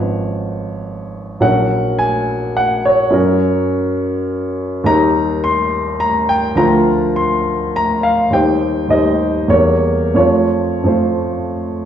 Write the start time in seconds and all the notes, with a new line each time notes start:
Already playing: G#1 F3 C#4 B4 C#5
1.40 A#1 F#3 C#4 A#4 F#5
1.99 G#5
2.57 F#5
2.85 C#5
3.10 F#2 F#3 C#4 A#4
4.84 D#2 G3 D#4 A#4 A#5
5.44 C6
6.00 A#5
6.29 G5
6.55 D2 F3 F4 A#4 A#5
7.16 C6
7.76 A#5
8.03 F5
8.30 D#2 G3 D#4 C5 G5
8.88 D#2 G3 D#4 C5 D#5
9.48 E2 G3 A#3 A#4 C#5
10.14 F2 F3 A3 F4 C#5
10.84 F2 F3 A3 F4 C5